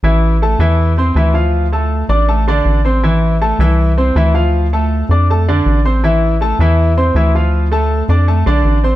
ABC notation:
X:1
M:4/4
L:1/8
Q:1/4=160
K:Am
V:1 name="Grand piano"
[E,Ee]2 [A,Aa] [E,Ee]2 [Ccc'] [E,Ee] [F,Ff]- | [F,Ff] [A,Aa]2 [Ddd'] [A,Aa] [D,Dd]2 [Ccc'] | [E,Ee]2 [A,Aa] [E,Ee]2 [Ccc'] [E,Ee] [F,Ff]- | [F,Ff] [A,Aa]2 [Ddd'] [A,Aa] [D,Dd]2 [Ccc'] |
[E,Ee]2 [A,Aa] [E,Ee]2 [Ccc'] [E,Ee] [F,Ff]- | [F,Ff] [A,Aa]2 [Ddd'] [A,Aa] [D,Dd]2 [Ccc'] |]
V:2 name="Analog synth bass" clef=bass
A,,,3 E,,3 D,,2- | D,,3 A,,,3 A,,,2- | A,,,3 C,,3 D,,2- | D,,3 F,,3 A,,,2- |
A,,,3 E,,3 D,,2- | D,,3 F,,2 B,,, A,,,2 |]